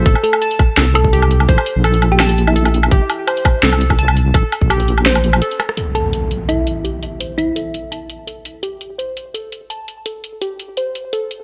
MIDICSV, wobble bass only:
0, 0, Header, 1, 2, 480
1, 0, Start_track
1, 0, Tempo, 357143
1, 78, Time_signature, 4, 2, 24, 8
1, 15373, End_track
2, 0, Start_track
2, 0, Title_t, "Wobble bass"
2, 0, Program_c, 0, 39
2, 79, Note_on_c, 0, 33, 100
2, 195, Note_off_c, 0, 33, 0
2, 1040, Note_on_c, 0, 36, 109
2, 1984, Note_off_c, 0, 36, 0
2, 1998, Note_on_c, 0, 33, 102
2, 2114, Note_off_c, 0, 33, 0
2, 2366, Note_on_c, 0, 34, 89
2, 3904, Note_off_c, 0, 34, 0
2, 3919, Note_on_c, 0, 33, 104
2, 4034, Note_off_c, 0, 33, 0
2, 4878, Note_on_c, 0, 36, 106
2, 5823, Note_off_c, 0, 36, 0
2, 5836, Note_on_c, 0, 33, 101
2, 5953, Note_off_c, 0, 33, 0
2, 6203, Note_on_c, 0, 34, 88
2, 7277, Note_off_c, 0, 34, 0
2, 15373, End_track
0, 0, End_of_file